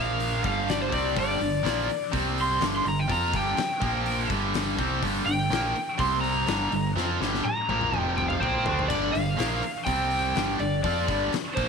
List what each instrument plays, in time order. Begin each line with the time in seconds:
Already playing: fingered electric bass A#1, distorted electric guitar A#2 F3 A#3, electric slide guitar F5
0.20 open hi-hat
0.43 fingered electric bass G1, distorted electric guitar G2 D3 G3, electric slide guitar F5, kick, open hi-hat
0.68 electric slide guitar D5, snare, open hi-hat
0.82 electric slide guitar C5
0.90 fingered electric bass C2, distorted electric guitar C3 G3 C4, electric slide guitar D5, kick, open hi-hat
1.15 fingered electric bass G1, distorted electric guitar G2 D3 G3, kick, open hi-hat
1.19 electric slide guitar D5
1.40 fingered electric bass G1, distorted electric guitar G2 D3, open hi-hat
1.63 fingered electric bass A#1, distorted electric guitar A#2 F3 A#3, snare, open hi-hat
1.88 muted distorted electric guitar stroke, muted fingered electric bass stroke, open hi-hat
2.11 fingered electric bass C2, distorted electric guitar C3 G3 C4, kick, open hi-hat
2.38 electric slide guitar C6, open hi-hat
2.60 fingered electric bass G1, distorted electric guitar G2 D3 G3, snare, open hi-hat
2.76 electric slide guitar C6
2.85 fingered electric bass G1, distorted electric guitar G2 D3, electric slide guitar A#5, open hi-hat
2.99 electric slide guitar G5
3.08 fingered electric bass F2, distorted electric guitar F3 C4 F4, electric slide guitar A#5, kick, open hi-hat
3.32 fingered electric bass G1, distorted electric guitar G2 D3 G3, electric slide guitar G5, kick, open hi-hat
3.57 muted distorted electric guitar stroke, snare, open hi-hat
3.81 fingered electric bass A#1, distorted electric guitar A#2 F3 A#3, kick, open hi-hat
4.06 open hi-hat
4.29 fingered electric bass G1, distorted electric guitar G2 D3 G3, kick, open hi-hat
4.54 snare, open hi-hat
4.77 fingered electric bass C2, distorted electric guitar C3 G3 C4, kick, open hi-hat
5.02 fingered electric bass G1, distorted electric guitar G2 D3 G3, kick, open hi-hat
5.26 fingered electric bass G1, distorted electric guitar G2 D3, electric slide guitar G5, open hi-hat
5.49 fingered electric bass A#1, distorted electric guitar A#2 F3 A#3, snare, open hi-hat
5.75 muted distorted electric guitar stroke, open hi-hat
5.98 fingered electric bass C2, distorted electric guitar C3 G3 C4, electric slide guitar C6, kick, open hi-hat
6.21 electric slide guitar A#5, open hi-hat
6.46 fingered electric bass G1, distorted electric guitar G2 D3 G3, snare, open hi-hat
6.72 fingered electric bass G1, distorted electric guitar G2 D3, open hi-hat
6.95 fingered electric bass F2, distorted electric guitar F3 C4 F4, snare
7.19 fingered electric bass G1, distorted electric guitar G2 D3 G3, snare
7.35 snare
7.45 electric slide guitar A#5, muted distorted electric guitar stroke, high tom
7.69 fingered electric bass A#1, distorted electric guitar A#2 F3 A#3, high tom
7.81 mid tom
7.91 fingered electric bass F1, distorted electric guitar F2 C3 F3, mid tom
8.01 electric slide guitar G5
8.17 electric slide guitar G5, mid tom
8.29 electric slide guitar F5, mid tom
8.40 fingered electric bass A#1, distorted electric guitar A#2 F3 A#3, electric slide guitar C5 G5, mid tom
8.65 fingered electric bass D2, distorted electric guitar D3 A3 D4, floor tom
8.79 floor tom
8.88 fingered electric bass G1, distorted electric guitar G2 D3 G3, electric slide guitar D5, kick, crash
9.12 fingered electric bass G1, distorted electric guitar G2 D3, electric slide guitar F5, open hi-hat
9.37 fingered electric bass A#1, distorted electric guitar A#2 F3 A#3, snare, open hi-hat
9.62 muted distorted electric guitar stroke, muted fingered electric bass stroke, open hi-hat
9.85 fingered electric bass C2, distorted electric guitar C3 G3 C4, electric slide guitar G5, kick, open hi-hat
10.11 open hi-hat
10.34 fingered electric bass G1, distorted electric guitar G2 D3 G3, snare, open hi-hat
10.59 fingered electric bass G1, distorted electric guitar G2 D3, electric slide guitar D5, open hi-hat
10.83 fingered electric bass F2, distorted electric guitar F3 C4 F4, electric slide guitar D5, kick, open hi-hat
11.08 fingered electric bass G1, distorted electric guitar G2 D3 G3, kick, open hi-hat
11.32 muted distorted electric guitar stroke, snare, open hi-hat
11.55 fingered electric bass A#1, distorted electric guitar A#2 F3 A#3, electric slide guitar C5, kick, open hi-hat